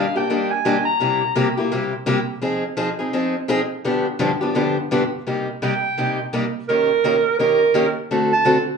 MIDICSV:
0, 0, Header, 1, 3, 480
1, 0, Start_track
1, 0, Key_signature, -3, "minor"
1, 0, Tempo, 354400
1, 1357, Time_signature, 4, 2, 24, 8
1, 11884, End_track
2, 0, Start_track
2, 0, Title_t, "Clarinet"
2, 0, Program_c, 0, 71
2, 0, Note_on_c, 0, 77, 83
2, 219, Note_off_c, 0, 77, 0
2, 227, Note_on_c, 0, 79, 81
2, 693, Note_on_c, 0, 80, 97
2, 713, Note_off_c, 0, 79, 0
2, 1143, Note_off_c, 0, 80, 0
2, 1151, Note_on_c, 0, 82, 91
2, 2068, Note_off_c, 0, 82, 0
2, 7622, Note_on_c, 0, 79, 96
2, 8517, Note_off_c, 0, 79, 0
2, 9056, Note_on_c, 0, 70, 94
2, 9954, Note_off_c, 0, 70, 0
2, 10006, Note_on_c, 0, 70, 85
2, 10725, Note_off_c, 0, 70, 0
2, 11276, Note_on_c, 0, 81, 94
2, 11713, Note_off_c, 0, 81, 0
2, 11884, End_track
3, 0, Start_track
3, 0, Title_t, "Steel-string acoustic guitar"
3, 0, Program_c, 1, 25
3, 210, Note_on_c, 1, 67, 54
3, 220, Note_on_c, 1, 62, 44
3, 235, Note_on_c, 1, 58, 38
3, 388, Note_off_c, 1, 67, 0
3, 393, Note_off_c, 1, 62, 0
3, 400, Note_off_c, 1, 58, 0
3, 404, Note_on_c, 1, 51, 64
3, 409, Note_on_c, 1, 55, 70
3, 414, Note_on_c, 1, 58, 69
3, 416, Note_on_c, 1, 62, 66
3, 422, Note_on_c, 1, 67, 67
3, 685, Note_off_c, 1, 51, 0
3, 687, Note_off_c, 1, 55, 0
3, 690, Note_off_c, 1, 58, 0
3, 691, Note_off_c, 1, 62, 0
3, 694, Note_off_c, 1, 67, 0
3, 879, Note_on_c, 1, 51, 77
3, 883, Note_on_c, 1, 55, 81
3, 891, Note_on_c, 1, 58, 83
3, 891, Note_on_c, 1, 67, 86
3, 894, Note_on_c, 1, 62, 89
3, 1029, Note_off_c, 1, 51, 0
3, 1031, Note_off_c, 1, 55, 0
3, 1034, Note_off_c, 1, 58, 0
3, 1034, Note_off_c, 1, 67, 0
3, 1036, Note_off_c, 1, 62, 0
3, 1355, Note_on_c, 1, 48, 58
3, 1363, Note_on_c, 1, 55, 62
3, 1364, Note_on_c, 1, 58, 66
3, 1371, Note_on_c, 1, 64, 61
3, 1377, Note_on_c, 1, 67, 63
3, 1640, Note_off_c, 1, 48, 0
3, 1644, Note_off_c, 1, 55, 0
3, 1645, Note_off_c, 1, 58, 0
3, 1648, Note_off_c, 1, 64, 0
3, 1651, Note_off_c, 1, 67, 0
3, 1834, Note_on_c, 1, 48, 86
3, 1839, Note_on_c, 1, 58, 97
3, 1840, Note_on_c, 1, 55, 78
3, 1847, Note_on_c, 1, 64, 86
3, 1850, Note_on_c, 1, 67, 89
3, 1986, Note_off_c, 1, 48, 0
3, 1988, Note_off_c, 1, 58, 0
3, 1989, Note_off_c, 1, 55, 0
3, 1992, Note_off_c, 1, 64, 0
3, 1994, Note_off_c, 1, 67, 0
3, 2132, Note_on_c, 1, 67, 54
3, 2145, Note_on_c, 1, 64, 47
3, 2160, Note_on_c, 1, 58, 46
3, 2309, Note_off_c, 1, 67, 0
3, 2310, Note_off_c, 1, 58, 0
3, 2315, Note_off_c, 1, 64, 0
3, 2324, Note_on_c, 1, 48, 70
3, 2326, Note_on_c, 1, 58, 67
3, 2329, Note_on_c, 1, 55, 70
3, 2335, Note_on_c, 1, 64, 73
3, 2337, Note_on_c, 1, 67, 80
3, 2605, Note_off_c, 1, 48, 0
3, 2606, Note_off_c, 1, 58, 0
3, 2607, Note_off_c, 1, 55, 0
3, 2610, Note_off_c, 1, 64, 0
3, 2611, Note_off_c, 1, 67, 0
3, 2792, Note_on_c, 1, 48, 86
3, 2797, Note_on_c, 1, 58, 87
3, 2799, Note_on_c, 1, 55, 97
3, 2807, Note_on_c, 1, 64, 89
3, 2807, Note_on_c, 1, 67, 91
3, 2945, Note_off_c, 1, 48, 0
3, 2947, Note_off_c, 1, 58, 0
3, 2948, Note_off_c, 1, 55, 0
3, 2952, Note_off_c, 1, 64, 0
3, 2952, Note_off_c, 1, 67, 0
3, 3271, Note_on_c, 1, 53, 63
3, 3281, Note_on_c, 1, 60, 65
3, 3282, Note_on_c, 1, 63, 68
3, 3288, Note_on_c, 1, 68, 68
3, 3558, Note_off_c, 1, 53, 0
3, 3563, Note_off_c, 1, 60, 0
3, 3564, Note_off_c, 1, 63, 0
3, 3567, Note_off_c, 1, 68, 0
3, 3748, Note_on_c, 1, 53, 91
3, 3756, Note_on_c, 1, 60, 85
3, 3759, Note_on_c, 1, 63, 83
3, 3761, Note_on_c, 1, 68, 80
3, 3903, Note_off_c, 1, 53, 0
3, 3907, Note_off_c, 1, 60, 0
3, 3909, Note_off_c, 1, 63, 0
3, 3909, Note_off_c, 1, 68, 0
3, 4047, Note_on_c, 1, 68, 53
3, 4061, Note_on_c, 1, 63, 47
3, 4070, Note_on_c, 1, 60, 46
3, 4226, Note_off_c, 1, 68, 0
3, 4230, Note_off_c, 1, 60, 0
3, 4233, Note_off_c, 1, 63, 0
3, 4242, Note_on_c, 1, 53, 69
3, 4247, Note_on_c, 1, 60, 73
3, 4250, Note_on_c, 1, 63, 79
3, 4258, Note_on_c, 1, 68, 71
3, 4524, Note_off_c, 1, 53, 0
3, 4526, Note_off_c, 1, 60, 0
3, 4528, Note_off_c, 1, 63, 0
3, 4532, Note_off_c, 1, 68, 0
3, 4717, Note_on_c, 1, 53, 85
3, 4724, Note_on_c, 1, 60, 89
3, 4730, Note_on_c, 1, 63, 100
3, 4738, Note_on_c, 1, 68, 103
3, 4867, Note_off_c, 1, 53, 0
3, 4871, Note_off_c, 1, 60, 0
3, 4874, Note_off_c, 1, 63, 0
3, 4878, Note_off_c, 1, 68, 0
3, 5207, Note_on_c, 1, 43, 61
3, 5212, Note_on_c, 1, 50, 71
3, 5215, Note_on_c, 1, 53, 66
3, 5216, Note_on_c, 1, 59, 72
3, 5224, Note_on_c, 1, 67, 72
3, 5225, Note_on_c, 1, 62, 71
3, 5487, Note_off_c, 1, 43, 0
3, 5489, Note_off_c, 1, 50, 0
3, 5490, Note_off_c, 1, 53, 0
3, 5491, Note_off_c, 1, 59, 0
3, 5495, Note_off_c, 1, 62, 0
3, 5495, Note_off_c, 1, 67, 0
3, 5675, Note_on_c, 1, 43, 85
3, 5680, Note_on_c, 1, 50, 80
3, 5680, Note_on_c, 1, 53, 83
3, 5684, Note_on_c, 1, 62, 83
3, 5686, Note_on_c, 1, 59, 84
3, 5692, Note_on_c, 1, 67, 85
3, 5827, Note_off_c, 1, 43, 0
3, 5829, Note_off_c, 1, 50, 0
3, 5829, Note_off_c, 1, 53, 0
3, 5831, Note_off_c, 1, 62, 0
3, 5832, Note_off_c, 1, 59, 0
3, 5835, Note_off_c, 1, 67, 0
3, 5970, Note_on_c, 1, 67, 59
3, 5984, Note_on_c, 1, 62, 53
3, 5992, Note_on_c, 1, 59, 50
3, 5998, Note_on_c, 1, 53, 44
3, 6148, Note_off_c, 1, 67, 0
3, 6153, Note_off_c, 1, 53, 0
3, 6154, Note_off_c, 1, 59, 0
3, 6155, Note_off_c, 1, 62, 0
3, 6161, Note_on_c, 1, 43, 67
3, 6166, Note_on_c, 1, 50, 70
3, 6170, Note_on_c, 1, 53, 61
3, 6170, Note_on_c, 1, 59, 64
3, 6172, Note_on_c, 1, 62, 67
3, 6178, Note_on_c, 1, 67, 67
3, 6443, Note_off_c, 1, 43, 0
3, 6446, Note_off_c, 1, 50, 0
3, 6448, Note_off_c, 1, 53, 0
3, 6448, Note_off_c, 1, 59, 0
3, 6449, Note_off_c, 1, 62, 0
3, 6452, Note_off_c, 1, 67, 0
3, 6651, Note_on_c, 1, 43, 81
3, 6658, Note_on_c, 1, 53, 78
3, 6659, Note_on_c, 1, 50, 81
3, 6659, Note_on_c, 1, 59, 84
3, 6667, Note_on_c, 1, 62, 86
3, 6668, Note_on_c, 1, 67, 84
3, 6795, Note_off_c, 1, 43, 0
3, 6798, Note_off_c, 1, 53, 0
3, 6799, Note_off_c, 1, 50, 0
3, 6799, Note_off_c, 1, 59, 0
3, 6803, Note_off_c, 1, 62, 0
3, 6803, Note_off_c, 1, 67, 0
3, 7132, Note_on_c, 1, 48, 56
3, 7137, Note_on_c, 1, 55, 58
3, 7137, Note_on_c, 1, 58, 61
3, 7145, Note_on_c, 1, 63, 53
3, 7147, Note_on_c, 1, 67, 68
3, 7409, Note_off_c, 1, 48, 0
3, 7412, Note_off_c, 1, 55, 0
3, 7412, Note_off_c, 1, 58, 0
3, 7416, Note_off_c, 1, 63, 0
3, 7417, Note_off_c, 1, 67, 0
3, 7612, Note_on_c, 1, 48, 82
3, 7614, Note_on_c, 1, 55, 71
3, 7619, Note_on_c, 1, 58, 77
3, 7622, Note_on_c, 1, 63, 85
3, 7627, Note_on_c, 1, 67, 88
3, 7756, Note_off_c, 1, 48, 0
3, 7757, Note_off_c, 1, 55, 0
3, 7759, Note_off_c, 1, 58, 0
3, 7761, Note_off_c, 1, 63, 0
3, 7763, Note_off_c, 1, 67, 0
3, 8093, Note_on_c, 1, 48, 65
3, 8097, Note_on_c, 1, 55, 63
3, 8102, Note_on_c, 1, 58, 69
3, 8106, Note_on_c, 1, 63, 76
3, 8112, Note_on_c, 1, 67, 67
3, 8370, Note_off_c, 1, 48, 0
3, 8372, Note_off_c, 1, 55, 0
3, 8375, Note_off_c, 1, 58, 0
3, 8377, Note_off_c, 1, 63, 0
3, 8379, Note_off_c, 1, 67, 0
3, 8572, Note_on_c, 1, 48, 72
3, 8573, Note_on_c, 1, 55, 79
3, 8581, Note_on_c, 1, 58, 77
3, 8584, Note_on_c, 1, 63, 80
3, 8586, Note_on_c, 1, 67, 72
3, 8716, Note_off_c, 1, 48, 0
3, 8717, Note_off_c, 1, 55, 0
3, 8721, Note_off_c, 1, 58, 0
3, 8722, Note_off_c, 1, 63, 0
3, 8723, Note_off_c, 1, 67, 0
3, 9059, Note_on_c, 1, 51, 55
3, 9066, Note_on_c, 1, 61, 66
3, 9067, Note_on_c, 1, 58, 60
3, 9073, Note_on_c, 1, 67, 65
3, 9079, Note_on_c, 1, 70, 60
3, 9334, Note_off_c, 1, 51, 0
3, 9337, Note_off_c, 1, 58, 0
3, 9337, Note_off_c, 1, 61, 0
3, 9341, Note_off_c, 1, 67, 0
3, 9344, Note_off_c, 1, 70, 0
3, 9536, Note_on_c, 1, 51, 76
3, 9544, Note_on_c, 1, 58, 82
3, 9546, Note_on_c, 1, 61, 85
3, 9552, Note_on_c, 1, 67, 89
3, 9556, Note_on_c, 1, 70, 86
3, 9678, Note_off_c, 1, 51, 0
3, 9682, Note_off_c, 1, 58, 0
3, 9683, Note_off_c, 1, 61, 0
3, 9686, Note_off_c, 1, 67, 0
3, 9688, Note_off_c, 1, 70, 0
3, 10014, Note_on_c, 1, 51, 63
3, 10019, Note_on_c, 1, 58, 59
3, 10025, Note_on_c, 1, 61, 66
3, 10027, Note_on_c, 1, 67, 73
3, 10030, Note_on_c, 1, 70, 72
3, 10291, Note_off_c, 1, 51, 0
3, 10293, Note_off_c, 1, 58, 0
3, 10297, Note_off_c, 1, 61, 0
3, 10297, Note_off_c, 1, 67, 0
3, 10299, Note_off_c, 1, 70, 0
3, 10484, Note_on_c, 1, 51, 81
3, 10494, Note_on_c, 1, 58, 92
3, 10498, Note_on_c, 1, 61, 86
3, 10501, Note_on_c, 1, 67, 74
3, 10502, Note_on_c, 1, 70, 85
3, 10632, Note_off_c, 1, 51, 0
3, 10637, Note_off_c, 1, 58, 0
3, 10639, Note_off_c, 1, 61, 0
3, 10641, Note_off_c, 1, 67, 0
3, 10641, Note_off_c, 1, 70, 0
3, 10981, Note_on_c, 1, 50, 54
3, 10984, Note_on_c, 1, 57, 69
3, 10989, Note_on_c, 1, 60, 61
3, 10995, Note_on_c, 1, 66, 57
3, 11001, Note_on_c, 1, 69, 67
3, 11254, Note_off_c, 1, 50, 0
3, 11256, Note_off_c, 1, 57, 0
3, 11258, Note_off_c, 1, 60, 0
3, 11261, Note_off_c, 1, 66, 0
3, 11264, Note_off_c, 1, 69, 0
3, 11442, Note_on_c, 1, 50, 78
3, 11446, Note_on_c, 1, 57, 79
3, 11451, Note_on_c, 1, 60, 78
3, 11454, Note_on_c, 1, 66, 97
3, 11460, Note_on_c, 1, 69, 89
3, 11591, Note_off_c, 1, 50, 0
3, 11593, Note_off_c, 1, 57, 0
3, 11595, Note_off_c, 1, 60, 0
3, 11597, Note_off_c, 1, 66, 0
3, 11600, Note_off_c, 1, 69, 0
3, 11884, End_track
0, 0, End_of_file